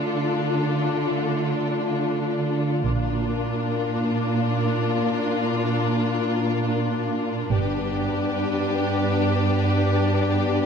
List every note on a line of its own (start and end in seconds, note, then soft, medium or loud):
0.00 2.82 D3 soft
0.00 2.83 A3 soft
0.00 2.82 D4 soft
0.00 2.82 F4 soft
0.00 2.82 A4 soft
2.85 3.40 A#1 soft
2.85 7.52 A#2 soft
2.85 7.38 A#3 soft
2.85 7.48 D4 soft
2.85 7.38 D4 soft
2.85 7.48 F4 soft
2.85 7.48 A#4 soft
7.52 8.07 G1 soft
7.52 10.66 G2 soft
7.52 10.66 B3 medium
7.52 10.66 D4 soft
7.52 10.66 G4 soft
7.52 10.66 B4 soft